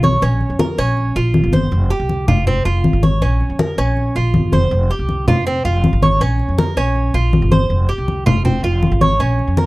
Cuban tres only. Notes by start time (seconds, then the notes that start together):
0.04 C#5
0.22 C#4
0.60 A#4
0.78 C#4
1.16 F4
1.53 C5
1.90 G4
2.28 F4
2.47 C4
2.65 F4
3.03 C#5
3.22 C#4
3.60 A#4
3.78 C#4
4.16 F4
4.53 C5
4.91 G4
5.28 F4
5.47 C4
5.65 F4
6.03 C#5
6.21 C#4
6.58 A#4
6.77 C#4
7.14 F4
7.52 C5
7.89 G4
8.26 F4
8.45 C4
8.64 F4
9.01 C#5
9.20 C#4
9.58 A#4